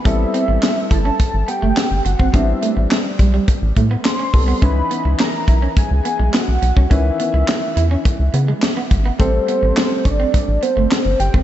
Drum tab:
HH |x-x-x-x-x-x-x-x-|x-x-x-x-x-x-x-o-|x-x-x-x-x-x-x-x-|x-x-x-x-x-x-x-x-|
CP |----x-------x---|----x-------x---|----x-------x---|----x-------x---|
SD |----o-------o---|----o-------o---|----o-------o---|----o-------o---|
BD |o-----o-o------o|o-----o-o-o---o-|o-----o-o------o|o-------o-----o-|

HH |x-x-x-x-x-x-x-x-|
CP |----x-------x---|
SD |----o-------o---|
BD |o-----o-o------o|